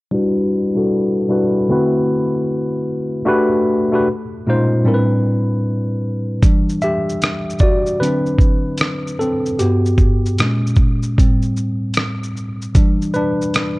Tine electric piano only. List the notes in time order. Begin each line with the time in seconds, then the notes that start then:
0.11 G3 D4 E4 F#4 B4
0.75 G3 D4 E4 F#4 A4
1.28 G3 D4 E4 F#4 B4
1.69 D3 A3 C4 E4 F#4 B4
3.25 A3 D4 F#4 G4 B4
3.92 A3 D4 F#4 G4 B4
4.47 A#2 G#3 C#4 D#4 F4 C5
4.84 A2 G3 C4 D4 E4 A#4
4.94 B4
6.44 E3 G3 D4
6.82 G4 E5
7.61 F#4 D5
8.00 D3 F#3 C4 D4 B4
9.19 C4 A4
9.59 G2 B3 F#4 G4
10.39 A#2 G#3 C#4
11.18 A2 G3 C4
12.76 E3 G3 D4
13.14 D4 B4